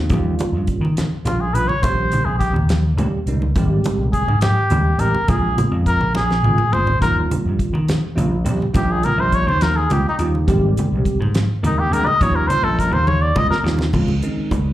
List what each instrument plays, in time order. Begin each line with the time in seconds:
0.09 slap bass D#2, tine electric piano D#3 G3 A#3 C#4 F4, kick, closed hi-hat, high conga
0.38 muted slap bass stroke, closed hi-hat, low conga
0.52 slap bass G2
0.67 kick, closed hi-hat
0.81 slap bass D#3, low conga
0.97 snare, closed hi-hat, high conga
1.25 slap bass A#1, tine electric piano D#3 G3 A#3 C#4 F4, muted trumpet F4, closed hi-hat, low conga
1.41 muted trumpet G#4
1.54 slap bass A#1, tine electric piano D#3 G3 A#3 C#4 F4, muted trumpet B4, closed hi-hat
1.68 muted trumpet C#5, low conga
1.82 slap bass A#1, tine electric piano D#3 G3 A#3 C#4 G4, muted trumpet C5, kick, closed hi-hat, high conga
2.12 closed hi-hat, low conga
2.25 slap bass A#1, muted trumpet G#4
2.39 muted trumpet G4, kick, closed hi-hat
2.53 slap bass D#2, low conga
2.69 snare, closed hi-hat, high conga
2.97 slap bass C#2, tine electric piano D#3 G3 A#3 C#4 G4, closed hi-hat, low conga
3.12 muted slap bass stroke
3.26 slap bass C#2, tine electric piano D#3 G3 A#3 C#4 D#4, closed hi-hat
3.42 low conga
3.56 slap bass G#1, tine electric piano D#3 G3 G#3 C4 G4, kick, closed hi-hat, high conga
3.84 muted slap bass stroke, closed hi-hat, low conga
3.98 slap bass C2
4.13 muted trumpet G#4, kick, closed hi-hat
4.28 slap bass G#2, low conga
4.41 muted trumpet G4, snare, closed hi-hat, high conga
4.70 slap bass D#2, tine electric piano D#3 G3 G#3 C4 G4, closed hi-hat, low conga
4.98 slap bass A1, tine electric piano D#3 G3 G#3 C4 G4, muted trumpet A#4, closed hi-hat
5.15 low conga
5.28 slap bass A#1, tine electric piano C#3 G#3 A#3 C4 F4, muted trumpet G#4, kick, closed hi-hat, high conga
5.58 closed hi-hat, low conga
5.71 slap bass F2
5.86 muted trumpet A#4, kick, closed hi-hat
6.00 slap bass A#1, low conga
6.15 muted trumpet G#4, snare, high conga, low conga
6.30 snare, high conga
6.43 slap bass G#1, tine electric piano C#3 G#3 A#3 C4 F4, high tom, high conga
6.58 muted slap bass stroke, mid tom, high conga
6.72 slap bass G#1, tine electric piano C#3 G#3 A#3 C4 F4, muted trumpet C5, mid tom, low conga
6.87 floor tom, low conga
7.00 slap bass D#2, tine electric piano D#3 G3 A#3 C#4 F4, muted trumpet A#4, kick, closed hi-hat, high conga
7.31 closed hi-hat, low conga
7.45 slap bass G2
7.59 kick, closed hi-hat
7.73 slap bass D#3, low conga
7.88 snare, closed hi-hat, high conga
8.15 slap bass A#1, tine electric piano D#3 G3 A#3 C#4 F4, closed hi-hat, low conga
8.44 slap bass A#1, tine electric piano D#3 G3 A#3 C#4 G4, closed hi-hat
8.62 low conga
8.73 slap bass A#1, tine electric piano D#3 G3 A#3 C#4 F4, muted trumpet G4, kick, closed hi-hat, high conga
8.91 muted trumpet G#4
9.03 muted trumpet A#4, closed hi-hat, low conga
9.17 slap bass A#1, muted trumpet C5
9.32 muted trumpet C#5, kick, closed hi-hat
9.46 slap bass D#2, muted trumpet C5, low conga
9.61 muted trumpet A#4, snare, closed hi-hat, high conga
9.76 muted trumpet G#4
9.89 slap bass C#2, tine electric piano D#3 G3 A#3 C#4 F4, muted trumpet G4, closed hi-hat, low conga
10.06 muted trumpet D#4, muted slap bass stroke
10.19 slap bass D#2, tine electric piano D#3 G3 A#3 C#4 F4, closed hi-hat
10.35 low conga
10.47 slap bass G#1, tine electric piano D#3 G3 G#3 C4 G4, kick, closed hi-hat, high conga
10.77 closed hi-hat, low conga
10.92 slap bass C2
11.05 kick, closed hi-hat
11.20 slap bass G#2, low conga
11.35 snare, closed hi-hat, high conga
11.63 slap bass D#2, tine electric piano D#3 G3 G#3 C4 A#4, muted trumpet D#4, closed hi-hat, low conga
11.79 muted trumpet G4
11.91 slap bass D2, tine electric piano D#3 G3 G#3 C4 G#4, muted trumpet A#4, closed hi-hat
12.06 muted trumpet D#5, low conga
12.21 slap bass D#2, tine electric piano D#3 G3 A#3 C#4 F4, muted trumpet C#5, kick, closed hi-hat, high conga
12.35 muted trumpet A#4, low conga
12.47 muted trumpet C5, closed hi-hat, low conga
12.63 slap bass A#1, muted trumpet A4, low conga
12.79 muted trumpet A#4, kick, closed hi-hat
12.91 slap bass D#2, muted trumpet C5, low conga
13.07 muted trumpet C#5, high tom, high conga
13.22 muted trumpet D5, low conga
13.36 slap bass C#2, tine electric piano D#3 G3 A#3 C#4 F4, muted trumpet D#5, kick, low conga
13.49 muted trumpet A#4, muted slap bass stroke, snare
13.64 slap bass D#2, tine electric piano D#3 G3 A#3 C#4 F4, snare, low conga
13.79 snare, low conga
13.93 slap bass C#2, tine electric piano D#3 G#3 C4 C#4 F4, kick, crash, high conga
14.08 low conga
14.22 tine electric piano D#3 G#3 C4 C#4 D#4, closed hi-hat
14.37 muted slap bass stroke
14.51 slap bass C#2, kick, closed hi-hat, low conga